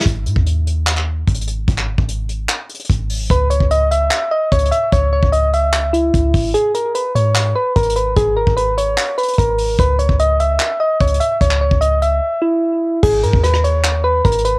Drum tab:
CC |------------------------------------------------------------------------------------------------|------------------------------------------------------------------------------------------------|------------------------------------------------------------------------------------------------|------------------------------------------------------------------------------------------------|
HH |x-----------x-----------x-----------x-----------x-----------------------x---x---x---x-----------|x-----------------------x-----------x-----------x-----------x--x--x--x--x-----------o-----------|x-----------x-----------x-----------x-----------x-----------------------x---x---x---x-----------|x-----------------------x-----------x-----------x-----------x-----------x-----------o-----------|
CP |------------------------------------------------x-----x-----------------------------------------|------x-----------------------------------------x-----------------------------------------------|------------------------------------------------x-----------------------------------------------|------------------------------------------------x-----------------------------------------------|
SD |------------------------------------------------------------------------------------------------|------------------------------------------------------------------------------------------------|------------------------------------------------------------------------------------------------|------------------------------------------------------------------------------------------------|
BD |o-----------------o-----------------------------------------------------o-----------------------|o-----------------o-----------------------------------------------------o-----------------------|o-----------------o-----------------------------------------------------o-----------------------|o-----------------o-----------------------------------------------------o-----------o-----------|

CC |------------------------------------------------------------------------------------------------|------------------------------------------------------------------------------------------------|------------------------------------------------------------------------------------------------|------------------------------------------------------------------------------------------------|
HH |x-----------x-----------x-----------x-----------x-----------------------x---x---x---x-----------|x-----------------------x-----------x-----------x-----------x--x--x--x--x-----------o-----------|x-----------x-----------x-----------x-----------x-----------------------x---x---x---x-----------|x-----------------------x-----------x-----------------------------------------------------------|
CP |------------------------------------------------x-----------------------------------------------|------------------------------------------------x-----------------------------------------------|------------------------------------------------x-----------------------------------------------|------x-----------------------------------------------------------------------------------------|
SD |------------------------------------------------------------------------------------------------|------------------------------------------------------------------------------------------------|------------------------------------------------------------------------------------------------|------------------------------------------------------------------------------------------------|
BD |------------------------------------------------------------------------o-----------------------|o-----------------o-----------------------------------------------------o-----------------------|o-----------------o-----------------------------------------------------o-----------------------|o-----------------o-----------------------------------------------------------------------------|

CC |x-----------------------------------------------------------------------------------------------|
HH |------------x-----------x-----------x-----------x-----------------------x---x---x---x-----------|
CP |------------------------------------------------x-----------------------------------------------|
SD |------------------------r-----r-----------------------------------------------------------------|
BD |o-----------------o-----------------------------------------------------o-----------------------|